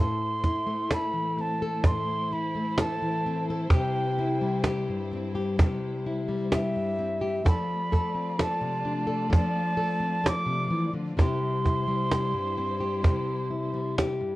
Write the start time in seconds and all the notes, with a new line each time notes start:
Already playing: A2 A3 E4 A4 C5
0.00 C6
0.44 E4, cajon bass, cajon slap
0.66 A3
0.91 A4 B5, cajon slap
1.13 E3
1.37 C4 A5, cajon slap
1.62 A4
1.84 A2 A4 C6, cajon bass, cajon slap
2.32 E4 B5, cajon slap
2.55 A3
2.78 A4 A5, cajon slap
3.02 E3
3.26 C4
3.50 A4
3.70 C3 G3 G4 G5, cajon bass, cajon slap
4.18 E4, cajon slap
4.41 G3
4.64 G4, cajon slap
4.89 G2
5.11 C4, cajon slap
5.35 G4
5.58 C3 G4, cajon bass, cajon slap
6.06 E4
6.28 G3
6.52 G4 E5, cajon slap
6.76 G2
6.99 C4
7.21 G4
7.45 F3 A3 F4 A4 D5 B5, cajon bass, cajon slap
7.92 A4, cajon bass, cajon slap
8.15 C4
8.39 A4 A5, cajon slap
8.61 C3
8.85 D4, cajon slap
9.07 A4
9.30 F3 A4 A5, cajon bass, cajon slap
9.77 A4, cajon slap
10.00 C4
10.24 A4 D6, cajon slap
10.46 C3
10.70 E3
10.93 D3
11.17 C3 G3 C4 E4 G4 C5, cajon bass, cajon slap
11.21 C6
11.64 E4, cajon bass, cajon slap
11.88 G3
12.11 G4, cajon slap
12.34 G2
12.58 C4, cajon slap
12.81 G4
13.03 C3 G4, cajon bass, cajon slap
13.51 E4, cajon slap
13.74 G3
13.98 G4, cajon slap
14.21 G2